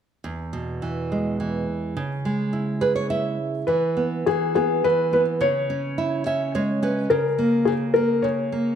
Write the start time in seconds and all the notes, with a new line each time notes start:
0.24 E2
0.53 B2
0.82 E3
1.12 G#3
1.40 E3
1.97 C#3
2.25 G#3
2.53 E4
2.81 G#4 B4
2.96 C#5
3.10 E4 E5
3.67 E3 B4
3.97 B3
4.26 E3 G#4
4.55 B3 G#4
4.84 E3 B4
5.13 B3 B4
5.41 C#3 C#5
5.70 C#4
5.98 E4
6.26 C#4 E5
6.55 G#3 C#5
6.83 C#4 B4
7.10 C#3 A#4
7.38 A#3
7.65 C#3 G#4
7.94 A#3 A#4
8.22 C#3 C#5
8.52 A#3